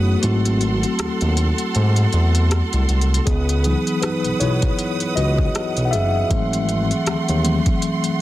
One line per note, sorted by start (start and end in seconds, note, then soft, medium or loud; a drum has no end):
0.00 0.16 F#1 medium
0.00 0.21 A3 medium
0.00 0.25 B3 medium
0.00 0.21 F#4 medium
0.00 0.25 G#4 medium
0.00 0.20 B4 medium
0.00 0.19 F#5 medium
0.00 0.20 D#6 medium
0.22 0.85 G#1 loud
0.22 3.23 F#3 medium
0.22 1.71 A3 medium
0.22 3.23 C4 medium
0.22 3.23 E4 medium
0.22 1.70 F#4 medium
0.22 3.24 A4 medium
0.22 3.24 F#5 medium
0.22 3.24 C6 medium
0.22 closed hi-hat medium
0.45 closed hi-hat medium
0.61 closed hi-hat soft
0.83 closed hi-hat soft
0.99 1.08 D#2 soft
0.99 cross-stick loud
0.99 closed hi-hat medium
1.21 1.52 D#2 medium
1.21 closed hi-hat soft
1.37 closed hi-hat medium
1.58 closed hi-hat medium
1.75 2.06 G#2 loud
1.75 closed hi-hat medium
1.96 closed hi-hat medium
2.13 2.62 E2 loud
2.13 closed hi-hat soft
2.35 closed hi-hat medium
2.51 cross-stick loud
2.51 closed hi-hat medium
2.73 2.86 C2 medium
2.73 closed hi-hat soft
2.89 3.20 C2 medium
2.89 closed hi-hat soft
3.01 closed hi-hat soft
3.14 closed hi-hat medium
3.26 3.76 C#2 loud
3.26 3.63 B3 medium
3.26 3.62 G#4 medium
3.26 6.28 B4 medium
3.26 8.21 F#5 medium
3.26 6.28 D#6 medium
3.26 kick loud
3.26 closed hi-hat medium
3.49 closed hi-hat medium
3.64 4.17 E3 medium
3.64 4.18 F#3 soft
3.64 4.01 B3 medium
3.64 4.02 D#4 medium
3.64 4.03 G#4 medium
3.64 closed hi-hat soft
3.87 closed hi-hat soft
4.02 4.39 D#4 medium
4.02 4.38 B4 medium
4.02 cross-stick loud
4.02 closed hi-hat medium
4.25 4.32 B1 soft
4.25 closed hi-hat soft
4.40 4.72 B1 medium
4.40 5.13 E4 medium
4.40 5.19 C#5 medium
4.40 closed hi-hat medium
4.62 kick medium
4.62 closed hi-hat medium
4.79 closed hi-hat medium
5.00 closed hi-hat soft
5.16 5.48 C#2 loud
5.16 5.83 F#4 medium
5.16 5.88 D#5 loud
5.16 closed hi-hat medium
5.38 kick medium
5.55 cross-stick loud
5.55 closed hi-hat medium
5.77 5.95 B1 medium
5.77 closed hi-hat soft
5.85 5.92 F#5 medium
5.91 6.24 F#1 medium
5.91 6.65 G#4 medium
5.91 6.64 E5 loud
5.91 closed hi-hat medium
6.29 6.92 G#1 loud
6.29 7.40 E3 medium
6.29 7.40 F#3 soft
6.29 8.21 A3 medium
6.29 7.40 A3 medium
6.29 7.41 C4 medium
6.29 8.21 C6 medium
6.29 kick loud
6.29 closed hi-hat medium
6.53 closed hi-hat medium
6.69 closed hi-hat soft
6.91 closed hi-hat soft
7.06 7.16 D#2 soft
7.06 cross-stick medium
7.06 closed hi-hat medium
7.28 7.60 D#2 medium
7.28 closed hi-hat soft
7.44 7.78 E3 soft
7.44 7.79 F#3 soft
7.44 7.79 A3 soft
7.44 7.79 C4 medium
7.44 closed hi-hat medium
7.66 kick medium
7.66 closed hi-hat medium
7.82 closed hi-hat medium
8.04 closed hi-hat medium